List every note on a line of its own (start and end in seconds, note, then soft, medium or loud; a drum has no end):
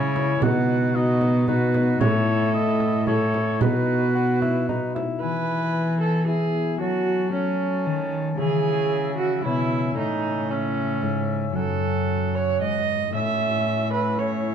0.00 0.39 C#3 medium
0.00 0.45 C#3 medium
0.00 0.45 G#3 medium
0.00 0.44 C#4 medium
0.00 0.45 C#4 medium
0.00 0.44 E4 medium
0.00 0.45 E4 medium
0.00 0.44 C#5 loud
0.16 frame drum medium
0.42 1.98 B2 medium
0.42 2.03 B2 medium
0.42 0.95 D#4 medium
0.42 0.94 F#4 medium
0.42 0.97 F#5 loud
0.42 frame drum medium
0.95 1.46 B3 medium
0.95 1.47 D#4 medium
0.95 1.47 F#4 medium
0.95 1.48 D#5 loud
1.21 frame drum soft
1.47 2.03 B3 medium
1.47 2.03 D#4 medium
1.47 2.02 D#4 medium
1.47 2.04 F#4 medium
1.47 2.03 F#4 medium
1.47 1.99 B4 loud
1.47 frame drum medium
1.74 frame drum medium
2.00 3.63 A2 medium
2.00 3.62 A2 medium
2.00 3.06 E4 medium
2.00 3.06 A4 medium
2.00 2.52 C#5 loud
2.00 frame drum medium
2.53 3.07 C#4 medium
2.53 3.07 E4 medium
2.53 3.07 A4 medium
2.53 3.06 D#5 medium
2.80 frame drum soft
3.07 3.63 C#4 medium
3.07 3.62 E4 medium
3.07 3.63 E4 medium
3.07 3.62 A4 medium
3.07 3.64 A4 medium
3.07 3.60 C#5 medium
3.07 frame drum medium
3.34 frame drum medium
3.60 5.24 B2 medium
3.60 5.02 B2 medium
3.60 4.09 D#4 medium
3.60 5.02 F#4 medium
3.60 4.93 B4 loud
3.60 frame drum medium
4.15 4.69 D#4 medium
4.15 4.40 F#4 medium
4.15 4.70 F#4 medium
4.42 4.68 E4 medium
4.42 frame drum soft
4.69 4.94 D#4 medium
4.69 5.25 D#4 medium
4.69 5.25 F#4 medium
4.69 frame drum soft
4.95 5.21 E4 medium
4.95 frame drum soft
5.19 6.83 E3 soft
5.19 6.77 E3 medium
5.19 6.24 B3 soft
5.19 6.24 E4 soft
5.19 6.11 E4 medium
5.19 6.26 G#4 soft
5.19 5.97 B4 medium
5.19 6.24 G#5 medium
6.01 6.26 A4 medium
6.25 6.81 B3 soft
6.25 6.82 E4 soft
6.25 6.80 E4 soft
6.25 6.79 G#4 medium
6.25 6.83 G#4 soft
6.25 6.82 G#5 medium
6.77 7.88 F#3 medium
6.77 8.41 F#3 soft
6.77 7.28 A3 soft
6.77 7.29 C#4 soft
6.77 7.33 C#4 medium
6.77 7.31 F#4 soft
6.77 7.32 F#4 medium
6.77 7.32 A5 medium
7.29 8.39 A3 soft
7.29 8.35 C#4 soft
7.29 8.11 C#4 medium
7.29 8.37 C#4 medium
7.29 8.41 F#4 soft
7.29 8.37 A5 medium
7.86 8.41 D#3 soft
7.86 8.38 D#3 medium
8.35 9.96 C#3 soft
8.35 9.46 C#3 medium
8.35 11.57 E3 soft
8.35 9.40 G#3 soft
8.35 9.41 C#4 soft
8.35 9.42 C#4 medium
8.35 9.42 E5 medium
8.39 9.14 G#4 medium
9.18 9.43 F#4 medium
9.41 9.96 B2 medium
9.41 10.00 B2 medium
9.41 9.98 G#3 soft
9.41 9.93 C#4 soft
9.41 9.96 C#4 medium
9.41 9.96 E4 medium
9.41 11.57 G#4 soft
9.41 9.96 E5 medium
9.93 11.04 A2 medium
9.93 11.58 C#3 soft
9.93 10.47 C#4 soft
9.93 10.49 C#4 medium
9.93 13.83 A4 soft
9.97 10.52 D#4 medium
9.97 10.49 E5 medium
10.48 11.52 C#4 soft
10.48 11.54 C#4 medium
10.48 11.30 C#4 medium
10.48 11.57 E4 soft
10.48 11.57 E5 medium
11.02 11.54 G#2 medium
11.02 11.58 G#2 medium
11.52 12.59 F#2 medium
11.52 13.16 F#2 medium
11.52 14.55 F#3 soft
11.52 13.10 C#4 soft
11.52 12.84 C#4 medium
11.52 13.15 F#4 soft
11.52 12.37 A4 medium
11.52 12.86 F#5 medium
12.35 12.61 C#5 medium
12.61 13.16 G#2 medium
12.61 13.13 G#2 medium
12.61 13.13 D#5 medium
13.10 14.55 A2 medium
13.10 14.15 A3 soft
13.10 14.16 C#4 soft
13.10 14.17 E4 soft
13.14 14.55 A2 medium
13.14 14.16 C#4 medium
13.14 14.16 E5 medium
13.14 13.92 E5 loud
13.93 14.20 B4 medium
14.16 14.55 A3 soft
14.16 14.55 C#4 soft
14.16 14.55 E4 soft
14.16 14.55 C#5 medium
14.21 14.55 C#4 medium
14.21 14.55 E5 medium